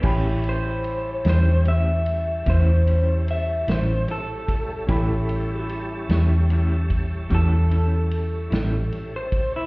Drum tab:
CC |x-----------|------------|
RD |-xxxxxxxxxxx|xxxxxxxxxxxx|
SD |---o-----o--|---o-----o--|
BD |o-----o----o|o----oo----o|